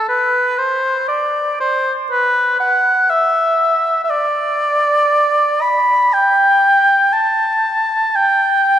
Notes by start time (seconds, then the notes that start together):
0.08 B4
0.58 C5
1.08 D5
1.60 C5
2.11 B4
2.60 F#5
3.10 E5
4.04 E5
4.10 D5
5.61 B5
6.14 G5
7.13 A5
8.15 G5